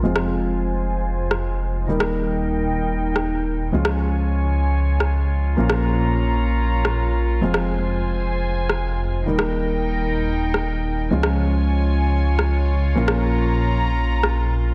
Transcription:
Already playing: string section F4
0.03 detuned saw bass F1, grand piano F3 G#3 C4 F4, string section C5 G#5
0.16 cross-stick
1.31 cross-stick
1.87 detuned saw bass D#1, grand piano D#3 G3 A#3 D#4, string section D#4 A#4 G5
2.00 cross-stick
3.16 cross-stick
3.72 detuned saw bass C#2, grand piano F3 G#3 C#4 F4, string section F4 C#5 G#5
3.85 cross-stick
5.00 cross-stick
5.57 detuned saw bass A#1, grand piano A#2 F3 A#3 C#4 F4, string section C#5 A#5
5.70 cross-stick
6.85 cross-stick
7.41 detuned saw bass F1, grand piano F3 G#3 C4 F4, string section C5 G#5
7.54 cross-stick
8.70 cross-stick
9.26 detuned saw bass D#1, grand piano D#3 G3 A#3 D#4, string section D#4 A#4 G5
9.39 cross-stick
10.54 cross-stick
11.11 detuned saw bass C#2, grand piano F3 G#3 C#4 F4, string section F4 C#5 G#5
11.23 cross-stick
12.39 cross-stick
12.95 detuned saw bass A#1, grand piano A#2 F3 A#3 C#4 F4, string section A#5
13.08 cross-stick
14.23 cross-stick

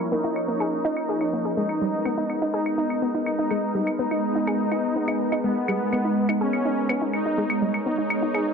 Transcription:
Already playing: analog synth pad F3 A#3 A#4 C#5, ambient pad C#4 A#4 C#5
0.12 synth pluck A#3, supersaw synth D#4
0.24 synth pluck E4
0.36 claves
0.48 synth pluck A#3
0.60 synth pluck G#4, claves
0.85 synth pluck D#4
0.97 claves
1.09 synth pluck G#4
1.21 synth pluck D#4, claves
1.33 synth pluck A#3
1.45 synth pluck G#4
1.57 analog synth pad G#3 B3 D#4 A#4, synth pluck G#3, ambient pad B3, supersaw synth D#4
1.69 claves
1.81 synth pluck G3
2.05 synth pluck B3, claves
2.18 synth pluck D#4
2.30 claves
2.35 ambient pad G#3
2.42 synth pluck D#4
2.54 supersaw synth D#4, synth pluck G#4
2.66 claves
2.78 synth pluck D#4
2.90 claves
3.02 synth pluck B3
3.14 synth pluck D#4
3.26 supersaw synth D#4, claves
3.32 ambient pad D#5
3.39 synth pluck D#4
3.51 synth pluck G#3, claves
3.75 synth pluck G3
3.87 claves
3.99 synth pluck B3, supersaw synth D#4
4.11 synth pluck D#4, claves
4.35 synth pluck D#4
4.47 synth pluck G#4, claves
4.72 synth pluck D#4, claves
4.96 synth pluck B3
5.08 synth pluck D#4, claves
5.32 synth pluck D#4, claves
5.44 synth pluck G#3, supersaw synth B3
5.68 synth pluck G3, claves
5.93 synth pluck B3, claves
6.05 synth pluck D#4
6.29 synth pluck D#4, claves
6.41 supersaw synth C#4, synth pluck G#4
6.50 ambient pad C#5, claves
6.65 synth pluck D#4
6.89 synth pluck B3, claves
7.02 synth pluck D#4
7.13 supersaw synth D#4, claves
7.26 synth pluck D#4
7.38 synth pluck G#3
7.50 claves
7.62 synth pluck G3
7.74 claves
7.86 synth pluck B3, supersaw synth D#4
7.98 synth pluck D#4
8.10 claves
8.22 synth pluck D#4
8.34 synth pluck G#4, claves

